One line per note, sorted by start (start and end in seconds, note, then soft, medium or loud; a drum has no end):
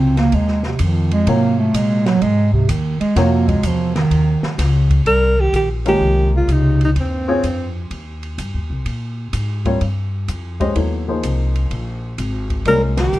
0.00 0.31 C#2 medium
0.00 0.71 C3 medium
0.00 0.71 F#3 medium
0.00 0.18 C4 medium
0.00 0.71 F4 medium
0.00 0.71 A#4 medium
0.00 0.71 C#5 medium
0.17 0.37 A#3 loud
0.17 snare soft
0.17 ride soft
0.32 0.78 D#2 medium
0.32 0.65 G#3 medium
0.32 ride medium
0.48 snare soft
0.63 0.84 C3 medium
0.63 snare soft
0.79 1.26 F2 loud
0.79 1.12 D#3 medium
0.79 hi-hat pedal medium
0.79 ride medium
1.11 1.31 G#3 loud
1.11 ride medium
1.27 1.73 G#2 medium
1.27 2.60 C3 medium
1.27 2.60 F#3 medium
1.27 1.59 A#3 loud
1.27 2.60 F4 medium
1.27 2.60 A#4 medium
1.27 2.60 C#5 medium
1.27 ride medium
1.59 1.78 A3 loud
1.74 2.20 A#2 medium
1.74 2.08 G#3 loud
1.74 hi-hat pedal medium
1.74 ride medium
2.06 2.24 F#3 loud
2.06 snare medium
2.06 ride soft
2.22 2.68 G#2 medium
2.22 2.52 G#3 loud
2.22 ride medium
2.53 2.71 C3 medium
2.53 kick medium
2.69 2.99 D#2 loud
2.69 3.00 D#3 medium
2.69 hi-hat pedal medium
2.69 ride medium
3.01 3.20 G#3 loud
3.01 muted upright bass stroke soft
3.01 ride medium
3.16 3.62 F2 medium
3.16 4.49 C3 medium
3.16 3.50 A#3 loud
3.16 4.49 F4 medium
3.16 4.49 F#4 medium
3.16 4.50 A#4 medium
3.16 4.50 C#5 medium
3.16 snare soft
3.16 ride medium
3.48 3.68 G#3 medium
3.48 kick medium
3.48 ride medium
3.63 4.09 E2 medium
3.63 3.95 F3 medium
3.63 hi-hat pedal medium
3.63 ride medium
3.96 4.55 D#3 loud
3.96 snare medium
3.96 ride soft
4.11 4.41 D#2 medium
4.11 ride medium
4.42 muted upright bass stroke soft
4.42 snare medium
4.58 5.04 C#2 loud
4.58 snare soft
4.58 hi-hat pedal medium
4.58 ride medium
4.90 kick medium
4.90 ride medium
5.06 5.52 C2 medium
5.06 5.40 G3 medium
5.06 5.42 A#4 loud
5.06 ride medium
5.38 5.54 D#3 medium
5.38 5.54 G4 medium
5.53 5.99 A#1 medium
5.53 5.69 D#3 medium
5.53 5.70 G4 medium
5.53 hi-hat pedal medium
5.53 ride medium
5.86 6.31 D#3 medium
5.86 6.45 G#3 medium
5.86 6.46 A#3 medium
5.86 6.46 C#4 medium
5.86 6.46 F4 medium
5.86 6.31 G4 loud
5.86 6.46 A#4 medium
5.86 ride medium
6.01 6.47 C2 medium
6.35 6.50 C#3 medium
6.35 6.53 F4 medium
6.48 6.94 C#2 medium
6.48 6.81 C3 medium
6.48 6.82 D#4 medium
6.48 hi-hat pedal medium
6.48 ride medium
6.81 6.88 C3 medium
6.81 6.90 D#4 medium
6.81 ride soft
6.96 7.42 D#2 medium
6.96 7.87 G2 medium
6.96 ride medium
7.00 7.89 C4 medium
7.28 7.42 C4 medium
7.28 7.42 C#4 medium
7.28 7.42 F4 medium
7.28 7.42 G#4 medium
7.28 7.42 C#5 medium
7.43 7.90 F2 medium
7.43 hi-hat pedal medium
7.43 ride medium
7.91 8.37 D#2 medium
7.91 ride medium
8.23 ride soft
8.38 8.56 G2 medium
8.38 hi-hat pedal medium
8.38 ride medium
8.54 8.70 D#2 medium
8.70 8.85 C2 medium
8.86 9.32 A#2 medium
8.86 ride medium
9.33 9.79 G#2 medium
9.33 hi-hat pedal medium
9.33 ride medium
9.65 9.79 G3 medium
9.65 9.79 C4 medium
9.65 9.80 F4 medium
9.65 9.80 A#4 medium
9.65 9.80 C#5 medium
9.65 kick medium
9.65 ride soft
9.81 10.27 G2 medium
9.81 ride medium
10.28 10.74 F2 medium
10.28 hi-hat pedal medium
10.28 ride medium
10.60 10.74 G#3 medium
10.60 10.74 C#4 medium
10.60 10.74 G4 medium
10.60 10.74 C5 medium
10.60 10.75 D#5 medium
10.60 kick soft
10.60 ride soft
10.76 11.22 D#2 medium
10.76 11.05 F#3 soft
10.76 11.05 B3 soft
10.76 11.05 E4 soft
10.76 11.05 A4 soft
10.76 11.05 C#5 medium
10.76 ride medium
11.08 12.09 F3 medium
11.08 12.09 A#3 medium
11.08 12.09 D#4 soft
11.08 12.10 G#4 medium
11.08 12.10 C5 medium
11.23 11.69 C2 medium
11.23 hi-hat pedal medium
11.23 ride medium
11.56 ride soft
11.71 12.17 A#1 medium
11.71 ride medium
12.18 12.64 G#1 medium
12.18 hi-hat pedal medium
12.18 ride medium
12.50 kick soft
12.50 ride soft
12.65 13.11 C2 medium
12.65 12.80 G3 medium
12.65 13.19 G#3 medium
12.65 13.19 A#3 soft
12.65 13.19 C#4 medium
12.65 13.19 F4 soft
12.65 13.19 A#4 medium
12.65 12.82 A#4 loud
12.65 ride medium
12.97 13.19 D#3 medium
12.97 13.19 G4 medium
12.97 snare medium
12.97 ride medium
13.13 13.19 A#1 medium
13.13 hi-hat pedal medium